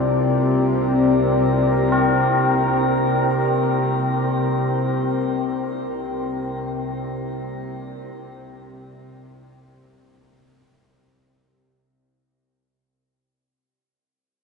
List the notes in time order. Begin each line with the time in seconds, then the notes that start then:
Already playing: C2 C3 C4 F4 G4 A#4 D5
1.92 C4